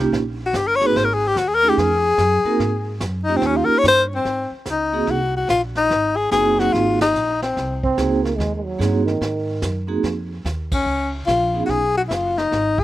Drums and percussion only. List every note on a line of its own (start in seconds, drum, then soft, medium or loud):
0.12 brush sweep soft
0.12 kick soft
0.12 snare soft
0.54 kick soft
0.54 snare medium
0.54 hi-hat pedal medium
0.81 snare soft
0.95 brush sweep soft
0.95 kick soft
0.95 snare soft
1.36 kick soft
1.36 snare medium
1.36 hi-hat pedal medium
1.78 brush sweep soft
1.78 kick soft
1.78 snare medium
2.18 kick soft
2.18 snare medium
2.18 hi-hat pedal medium
2.60 brush sweep soft
2.60 kick soft
2.60 snare soft
3.01 kick soft
3.01 snare medium
3.01 hi-hat pedal medium
3.42 brush sweep soft
3.42 kick soft
3.42 snare soft
3.84 kick soft
3.84 snare medium
3.84 hi-hat pedal medium
4.25 brush sweep soft
4.25 kick soft
4.25 snare soft
4.66 kick soft
4.66 snare medium
4.66 hi-hat pedal medium
5.07 brush sweep medium
5.07 kick soft
5.07 snare soft
5.49 kick soft
5.49 snare medium
5.49 hi-hat pedal soft
5.75 snare soft
5.91 brush sweep soft
5.91 kick soft
5.91 snare soft
6.31 kick soft
6.31 snare medium
6.31 hi-hat pedal medium
6.59 snare soft
6.74 brush sweep soft
6.74 kick soft
6.74 snare soft
7.01 snare medium
7.01 ride medium
7.15 hi-hat pedal soft
7.42 snare soft
7.56 brush sweep soft
7.56 kick soft
7.56 snare soft
7.83 kick medium
7.98 kick soft
7.98 snare medium
7.98 hi-hat pedal medium
8.25 snare soft
8.39 brush sweep soft
8.39 kick soft
8.39 snare soft
8.80 kick soft
8.80 snare medium
8.80 hi-hat pedal soft
9.08 snare soft
9.21 brush sweep medium
9.21 kick soft
9.21 snare soft
9.62 kick soft
9.62 snare medium
9.62 hi-hat pedal medium
10.03 brush sweep soft
10.03 kick soft
10.03 snare soft
10.45 kick soft
10.45 snare medium
10.45 hi-hat pedal medium
10.71 kick medium
10.71 ride medium
10.86 brush sweep soft
11.28 kick soft
11.28 snare medium
11.28 hi-hat pedal soft
11.69 brush sweep soft
11.69 kick soft
11.69 snare soft
12.10 kick soft
12.10 snare medium
12.10 hi-hat pedal medium
12.38 snare soft
12.52 brush sweep soft
12.52 kick soft
12.52 snare soft
12.78 kick medium